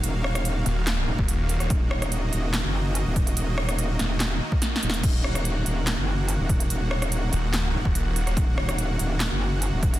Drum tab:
CC |------------------------------------------------|------------------------------------------------|------------------------------------------------|x-----------------------------------------------|
HH |x--------x--x-----x-----x-----------x-----x--x--|x--------x--x-----x-----x-----------x-----x--x--|x--------x--x-----x-----x-----------x-----x--x--|x--------x--x-----x-----x-----------x-----x--x--|
CP |------------------------x-----------------------|------------------------x-----------------------|------------------------x-----------------------|------------------------x-----------------------|
SD |------r--r--------------o--------------------r--|------r--r--------------o-----------------------|------r--r--------o-----o-----------o---o---o---|------r--r--------------o-----------------------|
BD |---------------------------------o--------------|o-----------------------------------------o-----|---------------------------------o--------------|o-----------------------------------------o-----|

CC |------------------------------------------------|------------------------------------------------|
HH |x--------x--x-----x-----x-----------x-----x--x--|x--------x--x-----x-----x-----------x-----x--x--|
CP |------------------------x-----------------------|------------------------x-----------------------|
SD |------r--r--------------o--------------------r--|------r--r--------------o-----------------------|
BD |---------------------------------o--------------|o-----------------------------------------o-----|